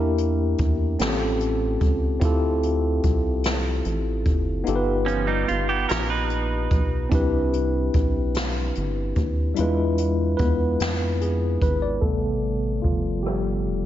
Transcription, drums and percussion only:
0.18 closed hi-hat
0.58 kick, closed hi-hat
0.99 snare, closed hi-hat
1.40 closed hi-hat
1.81 kick, closed hi-hat
2.21 kick, closed hi-hat
2.63 closed hi-hat
3.03 kick, closed hi-hat
3.44 snare, closed hi-hat
3.85 closed hi-hat
4.25 kick, closed hi-hat
4.67 closed hi-hat
5.08 closed hi-hat
5.48 closed hi-hat
5.89 snare, closed hi-hat
6.30 closed hi-hat
6.71 kick, closed hi-hat
7.12 kick, closed hi-hat
7.53 closed hi-hat
7.94 kick, closed hi-hat
8.35 snare, closed hi-hat
8.75 closed hi-hat
9.16 kick, closed hi-hat
9.56 closed hi-hat
9.98 closed hi-hat
10.39 kick, closed hi-hat
10.80 snare, closed hi-hat
11.21 closed hi-hat
11.62 kick, closed hi-hat
12.02 kick, closed hi-hat
12.43 closed hi-hat
12.84 kick, closed hi-hat
13.24 cross-stick, closed hi-hat
13.66 closed hi-hat

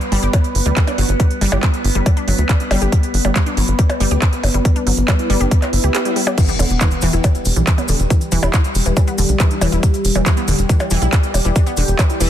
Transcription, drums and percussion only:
0.01 closed hi-hat
0.12 open hi-hat
0.23 closed hi-hat
0.33 kick, closed hi-hat, percussion blips
0.44 closed hi-hat
0.55 open hi-hat
0.66 closed hi-hat
0.77 kick, clap, closed hi-hat
0.87 closed hi-hat, percussion blips
0.98 open hi-hat
1.09 closed hi-hat
1.20 kick, closed hi-hat
1.31 closed hi-hat
1.41 open hi-hat
1.52 percussion blips
1.63 kick, clap, closed hi-hat
1.74 closed hi-hat
1.84 open hi-hat
1.95 closed hi-hat
2.06 kick, closed hi-hat, percussion blips
2.17 closed hi-hat
2.28 open hi-hat
2.38 closed hi-hat
2.49 kick, clap, closed hi-hat
2.60 closed hi-hat
2.71 open hi-hat, percussion blips
2.82 closed hi-hat
2.92 kick, closed hi-hat
3.03 closed hi-hat
3.14 open hi-hat
3.25 closed hi-hat, percussion blips
3.36 kick, clap, closed hi-hat
3.46 closed hi-hat
3.57 open hi-hat
3.68 closed hi-hat
3.79 kick, closed hi-hat
3.90 closed hi-hat, percussion blips
4.00 open hi-hat
4.11 closed hi-hat
4.22 kick, clap, closed hi-hat
4.33 closed hi-hat
4.44 open hi-hat, percussion blips
4.54 closed hi-hat
4.65 kick, closed hi-hat
4.76 closed hi-hat
4.87 open hi-hat
4.97 closed hi-hat
5.08 kick, clap, closed hi-hat, percussion blips
5.19 closed hi-hat
5.30 open hi-hat
5.41 closed hi-hat
5.51 kick, closed hi-hat
5.62 clap, closed hi-hat, percussion blips
5.73 open hi-hat
5.84 closed hi-hat
5.95 clap, closed hi-hat
6.05 closed hi-hat
6.16 open hi-hat
6.27 closed hi-hat, percussion blips
6.38 kick, closed hi-hat, crash, cabasa
6.48 closed hi-hat, cabasa
6.59 open hi-hat, percussion blips, cabasa
6.70 closed hi-hat, cabasa
6.81 kick, clap, closed hi-hat, cabasa
6.91 closed hi-hat, cabasa
7.01 open hi-hat, cabasa
7.13 closed hi-hat, cabasa
7.24 kick, closed hi-hat, percussion blips, cabasa
7.35 closed hi-hat, cabasa
7.45 open hi-hat, cabasa
7.56 closed hi-hat, cabasa
7.67 kick, clap, closed hi-hat, cabasa
7.78 closed hi-hat, percussion blips, cabasa
7.88 open hi-hat, cabasa
8.00 closed hi-hat, cabasa
8.10 kick, closed hi-hat, cabasa
8.21 closed hi-hat, cabasa
8.32 open hi-hat, cabasa
8.42 closed hi-hat, percussion blips, cabasa
8.54 kick, clap, closed hi-hat, cabasa
8.64 closed hi-hat, cabasa
8.75 open hi-hat, cabasa
8.86 closed hi-hat, cabasa
8.97 kick, closed hi-hat, percussion blips, cabasa
9.07 closed hi-hat, cabasa
9.18 open hi-hat, cabasa
9.29 closed hi-hat, cabasa
9.40 kick, clap, closed hi-hat, cabasa
9.51 closed hi-hat, cabasa
9.61 open hi-hat, percussion blips, cabasa
9.72 closed hi-hat, cabasa
9.83 kick, closed hi-hat, cabasa
9.94 closed hi-hat, cabasa
10.05 open hi-hat, cabasa
10.15 closed hi-hat, percussion blips, cabasa
10.26 kick, clap, closed hi-hat, cabasa
10.37 closed hi-hat, cabasa
10.48 open hi-hat, cabasa
10.59 closed hi-hat, cabasa
10.69 kick, closed hi-hat, cabasa
10.80 closed hi-hat, percussion blips, cabasa
10.91 open hi-hat, cabasa
11.02 closed hi-hat, cabasa
11.13 kick, clap, closed hi-hat, cabasa
11.23 closed hi-hat, cabasa
11.34 open hi-hat, percussion blips, cabasa
11.45 closed hi-hat, cabasa
11.56 kick, closed hi-hat, cabasa
11.67 closed hi-hat, cabasa
11.77 open hi-hat, cabasa
11.88 closed hi-hat, cabasa
11.99 kick, clap, closed hi-hat, percussion blips, cabasa
12.10 closed hi-hat, cabasa
12.20 open hi-hat, cabasa

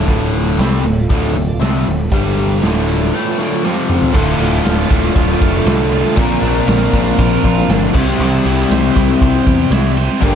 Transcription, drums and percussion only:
0.08 kick, closed hi-hat
0.34 closed hi-hat
0.60 snare, closed hi-hat
0.86 closed hi-hat
1.10 kick, closed hi-hat
1.36 closed hi-hat
1.62 snare, closed hi-hat
1.86 closed hi-hat
2.12 kick, closed hi-hat
2.26 snare
2.37 closed hi-hat
2.62 snare, closed hi-hat
2.88 closed hi-hat
3.65 snare
3.89 mid tom
4.02 floor tom
4.14 kick, crash
4.40 ride
4.65 snare, ride
4.90 kick, ride
5.16 kick, ride
5.42 kick, ride
5.67 snare, ride
5.93 ride
6.17 kick, ride
6.43 ride
6.68 snare, ride
6.93 kick, ride
7.19 kick, ride
7.44 kick, ride
7.70 snare, ride
7.94 kick, crash
8.46 ride
8.59 snare
8.71 snare, ride
8.96 kick, ride
9.22 kick, ride
9.47 kick, ride
9.72 snare, ride
9.97 ride
10.22 kick, ride

